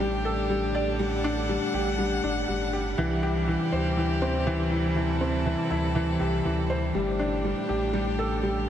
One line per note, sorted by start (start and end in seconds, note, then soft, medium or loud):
0.00 1.58 A1 medium
0.00 2.94 A2 medium
0.00 2.94 D3 medium
0.00 0.50 G3 medium
0.00 8.69 G3 medium
0.00 1.24 D4 medium
0.00 2.94 D4 medium
0.00 0.98 G4 medium
0.00 1.74 G4 medium
0.25 0.49 A4 medium
0.50 0.74 G3 medium
0.75 0.98 D5 medium
0.99 1.23 G3 medium
0.99 2.96 F#5 medium
1.24 1.48 D4 loud
1.49 1.63 G3 loud
1.74 2.20 A1 medium
1.74 1.97 G4 medium
1.99 2.22 G3 medium
2.24 2.44 G1 medium
2.24 2.38 D4 medium
2.48 2.95 G1 medium
2.48 2.72 G3 medium
2.73 2.87 G4 medium
2.98 3.57 C2 loud
2.98 6.91 C3 medium
2.98 6.91 E3 medium
2.98 3.12 E3 loud
2.98 6.90 E4 medium
2.98 4.94 G4 medium
3.23 3.46 G4 medium
3.48 3.71 E3 medium
3.72 5.55 D2 medium
3.72 3.96 C5 medium
3.97 4.21 E3 medium
4.22 4.45 C4 medium
4.47 4.61 E3 loud
4.71 4.95 E4 medium
4.96 5.20 E3 medium
4.96 6.93 A4 medium
5.21 5.35 C4 medium
5.46 5.69 E3 medium
5.70 6.17 D2 medium
5.70 5.85 E4 medium
5.95 6.09 E3 loud
6.20 6.41 C2 medium
6.20 6.44 G4 medium
6.45 6.91 D2 medium
6.45 6.69 E3 medium
6.70 6.93 C5 medium
6.95 7.53 G1 loud
6.95 8.69 A2 medium
6.95 8.69 D3 medium
6.95 7.18 G3 medium
6.95 8.69 D4 medium
6.95 8.69 G4 medium
7.19 7.33 D4 medium
7.44 7.68 G3 medium
7.69 8.69 A1 medium
7.69 7.83 G4 medium
7.93 8.08 G3 loud
8.19 8.42 A4 medium
8.43 8.67 G3 medium